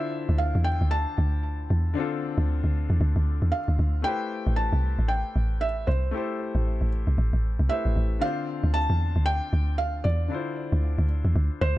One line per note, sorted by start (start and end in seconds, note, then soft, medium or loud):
0.00 1.91 D3 medium
0.00 1.92 D4 medium
0.00 1.93 E4 medium
0.00 1.93 F4 medium
0.00 1.94 C5 medium
0.00 0.36 E5 loud
0.29 0.54 D2 loud
0.38 0.66 F5 loud
0.55 0.80 E2 medium
0.64 0.89 G5 loud
0.81 1.06 D2 medium
0.91 3.60 A5 loud
1.18 1.69 D2 loud
1.70 1.96 E2 medium
1.94 4.00 D3 medium
1.94 4.01 C4 medium
1.94 4.00 D4 medium
1.98 4.02 F4 medium
1.98 4.03 A4 medium
2.38 2.63 D2 loud
2.64 2.89 D2 medium
2.90 3.00 E2 medium
3.01 3.15 D2 loud
3.16 3.41 D2 loud
3.42 3.53 E2 medium
3.52 4.01 F5 loud
3.68 3.79 D2 medium
3.79 4.04 D2 medium
4.02 6.08 A3 medium
4.02 6.09 E4 medium
4.02 6.10 G4 medium
4.02 4.53 G5 loud
4.07 6.11 B4 medium
4.07 6.11 C5 medium
4.47 4.72 A1 loud
4.56 5.11 A5 medium
4.73 4.98 C2 loud
4.99 5.24 A1 medium
5.08 5.63 G5 medium
5.36 5.86 A1 loud
5.61 5.86 E5 medium
5.87 6.13 C2 medium
5.87 6.88 C5 medium
6.11 7.66 A3 medium
6.11 7.67 E4 medium
6.11 7.67 G4 medium
6.16 7.68 A4 medium
6.16 7.69 C5 medium
6.55 6.80 A1 medium
6.81 7.06 A1 medium
7.07 7.18 C2 medium
7.18 7.33 A1 loud
7.33 7.59 A1 medium
7.59 7.70 C2 loud
7.69 8.22 A3 medium
7.69 8.22 E4 soft
7.69 8.23 G4 soft
7.69 8.23 B4 soft
7.69 8.23 C5 medium
7.69 8.24 E5 loud
7.85 7.96 A1 medium
7.96 8.22 A1 medium
8.19 10.26 D3 medium
8.19 10.27 C4 medium
8.19 10.26 D4 medium
8.19 8.76 F5 loud
8.24 10.28 F4 medium
8.24 10.29 C5 medium
8.64 8.89 D2 loud
8.74 9.23 A5 loud
8.90 9.15 E2 medium
9.16 9.41 D2 medium
9.26 9.75 G5 loud
9.53 10.03 D2 medium
9.78 10.05 F5 loud
10.04 10.30 E2 loud
10.04 11.05 D5 medium
10.28 11.78 D3 medium
10.28 11.78 D4 medium
10.28 11.78 E4 medium
10.33 11.78 F4 medium
10.33 11.78 C5 medium
10.72 10.98 D2 loud
10.99 11.24 D2 loud
11.25 11.35 E2 medium
11.36 11.50 D2 loud
11.61 11.76 D2 loud
11.61 11.78 C5 loud